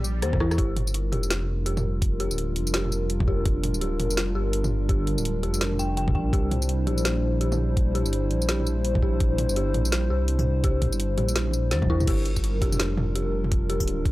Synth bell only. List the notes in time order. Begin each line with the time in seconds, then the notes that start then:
Already playing: G4
0.22 C5
0.40 E4
0.58 G4
1.12 G4
1.66 G4
2.20 G4
2.74 G4
3.28 G4
3.81 G4
4.35 G4
4.89 G4
5.43 G4
5.79 G5
5.97 G5
6.15 G5
6.33 G4
6.87 G4
7.41 G4
7.95 G4
8.49 G4
9.03 G4
9.57 G4
10.10 G4
10.64 G4
11.18 G4
11.72 C5
11.90 E4
12.08 G4
12.62 G4
13.16 G4
13.70 G4